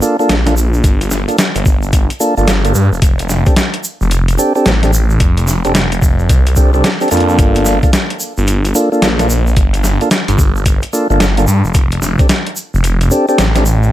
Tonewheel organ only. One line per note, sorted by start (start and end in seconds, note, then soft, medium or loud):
0.02 0.17 A#3 medium
0.02 0.17 D4 medium
0.02 0.17 F4 medium
0.02 0.17 A4 loud
0.19 0.35 A#3 medium
0.19 0.35 D4 medium
0.19 0.35 F4 medium
0.19 0.35 A4 loud
0.47 0.55 A#3 medium
0.47 0.55 D4 medium
0.47 0.55 F4 medium
0.47 0.55 A4 medium
1.28 1.37 A#3 medium
1.28 1.37 D4 medium
1.28 1.37 F4 medium
1.28 1.37 A4 medium
2.20 2.35 A#3 medium
2.20 2.35 D4 medium
2.20 2.35 F4 medium
2.20 2.35 A4 medium
2.37 2.53 A#3 medium
2.37 2.53 D4 medium
2.37 2.53 F4 medium
2.37 2.53 A4 loud
2.65 2.73 A#3 medium
2.65 2.73 D4 medium
2.65 2.73 F4 medium
2.65 2.73 A4 medium
3.47 3.55 C4 medium
3.47 3.55 D4 medium
3.47 3.55 G4 medium
3.47 3.55 A4 medium
4.38 4.53 C4 medium
4.38 4.53 D4 medium
4.38 4.53 G4 medium
4.38 4.53 A4 loud
4.55 4.71 C4 medium
4.55 4.71 D4 medium
4.55 4.71 G4 medium
4.55 4.71 A4 loud
4.83 4.91 C4 medium
4.83 4.91 D4 medium
4.83 4.91 G4 medium
4.83 4.91 A4 medium
5.65 5.73 C4 medium
5.65 5.73 D4 medium
5.65 5.73 G4 medium
5.65 5.73 A4 medium
6.57 6.71 C4 medium
6.57 6.71 D4 medium
6.57 6.71 G4 medium
6.57 6.71 A4 loud
6.74 6.90 C4 medium
6.74 6.90 D4 medium
6.74 6.90 G4 medium
6.74 6.90 A4 loud
7.01 7.10 C4 medium
7.01 7.10 D4 medium
7.01 7.10 G4 medium
7.01 7.10 A4 medium
7.11 7.79 A#3 medium
7.11 7.79 D4 medium
7.11 7.79 F4 medium
7.11 7.79 A4 loud
7.83 7.91 A#3 medium
7.83 7.91 D4 medium
7.83 7.91 F4 medium
7.83 7.91 A4 medium
8.75 8.90 A#3 medium
8.75 8.90 D4 medium
8.75 8.90 F4 medium
8.75 8.90 A4 loud
8.92 9.08 A#3 medium
8.92 9.08 D4 medium
8.92 9.08 F4 medium
8.92 9.08 A4 loud
9.19 9.28 A#3 medium
9.19 9.28 D4 medium
9.19 9.28 F4 medium
9.19 9.28 A4 medium
10.01 10.10 A#3 medium
10.01 10.10 D4 medium
10.01 10.10 F4 medium
10.01 10.10 A4 medium
10.93 11.08 A#3 medium
10.93 11.08 D4 medium
10.93 11.08 F4 medium
10.93 11.08 A4 loud
11.10 11.26 A#3 medium
11.10 11.26 D4 medium
11.10 11.26 F4 medium
11.10 11.26 A4 loud
11.38 11.46 A#3 medium
11.38 11.46 D4 medium
11.38 11.46 F4 medium
11.38 11.46 A4 medium
12.19 12.28 C4 medium
12.19 12.28 D4 medium
12.19 12.28 G4 medium
12.19 12.28 A4 medium
13.11 13.26 C4 medium
13.11 13.26 D4 medium
13.11 13.26 G4 medium
13.11 13.26 A4 loud
13.29 13.44 C4 medium
13.29 13.44 D4 medium
13.29 13.44 G4 medium
13.29 13.44 A4 loud
13.56 13.64 C4 medium
13.56 13.64 D4 medium
13.56 13.64 G4 medium
13.56 13.64 A4 medium